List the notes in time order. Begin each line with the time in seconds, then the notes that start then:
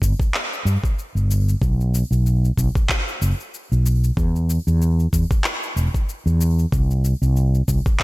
0.02 G1, kick, cabasa
0.20 kick, cabasa
0.34 clap, cabasa
0.53 cabasa
0.65 G2, cabasa
0.84 kick, cabasa
0.99 cabasa
1.15 G1, cabasa
1.31 cabasa
1.49 cabasa
1.61 B1, kick, cabasa
1.81 cabasa
1.95 cabasa
2.11 B1, cabasa
2.26 cabasa
2.45 cabasa
2.57 B1, kick, cabasa
2.75 kick, cabasa
2.89 kick, clap, cabasa
3.08 cabasa
3.22 F#1, cabasa
3.40 cabasa
3.54 cabasa
3.72 B1, cabasa
3.86 cabasa
4.04 cabasa
4.17 E2, kick, cabasa
4.36 cabasa
4.50 cabasa
4.67 E2, cabasa
4.82 cabasa
5.00 cabasa
5.13 E2, kick, cabasa
5.31 kick, cabasa
5.44 clap, cabasa
5.63 cabasa
5.76 E1, cabasa
5.94 kick, cabasa
6.09 cabasa
6.26 E2, cabasa
6.41 cabasa
6.59 cabasa
6.72 C2, kick, cabasa
6.91 cabasa
7.05 cabasa
7.22 C2, cabasa
7.37 cabasa
7.54 cabasa
7.68 C2, kick, cabasa
7.86 kick, cabasa
8.00 kick, clap, cabasa